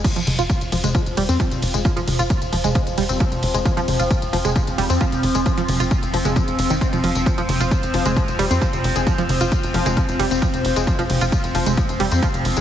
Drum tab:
CC |x---------------|----------------|----------------|----------------|
RD |--x---x---x---x-|--x---x---x---x-|--x---x---x---x-|--x---x---x---x-|
HH |xxoxxxoxxxoxxxox|xxoxxxoxxxoxxxox|xxoxxxoxxxoxxxox|xxoxxxoxxxoxxxox|
TB |xx-xxx-xxx-xxx-x|xx-xxx-xxx-xxx-x|xx-xxx-xxx-xxx-x|xx-xxx-xxx-xxx-x|
T2 |--o----o-----o--|--o----o-----o--|--o----o-----o--|--o----o-----o--|
BD |o---o---o---o---|o---o---o---o---|o---o---o---o---|o---o---o---o---|

CC |----------------|----------------|----------------|
RD |--x---x---x---x-|--x---x---x---x-|--x---x---x---x-|
HH |xxoxxxoxxxoxxxox|xxoxxxoxxxoxxxox|xxoxxxoxxxoxxxox|
TB |xx-xxx-xxx-xxx-x|xx-xxx-xxx-xxx-x|xx-xxx-xxx-xxx-x|
T2 |--o----o-----o--|--o----o-----o--|--o----o-----o--|
BD |o---o---o---o---|o---o---o---o---|o---o---o---o---|